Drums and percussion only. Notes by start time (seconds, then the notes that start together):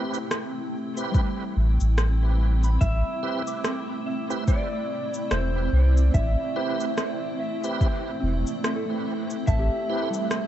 0.14 shaker
0.31 cross-stick, shaker
0.97 shaker
1.14 kick, shaker
1.80 shaker
1.98 cross-stick, shaker
2.64 shaker
2.81 kick, shaker
3.47 shaker
3.64 cross-stick, shaker
4.30 shaker
4.48 kick, shaker
5.14 shaker
5.31 cross-stick, shaker
5.97 shaker
6.14 kick, shaker
6.80 shaker
6.98 cross-stick, shaker
7.64 shaker
7.81 kick, shaker
8.47 shaker
8.64 cross-stick, shaker
9.30 shaker
9.47 kick, shaker
10.14 shaker
10.31 cross-stick, shaker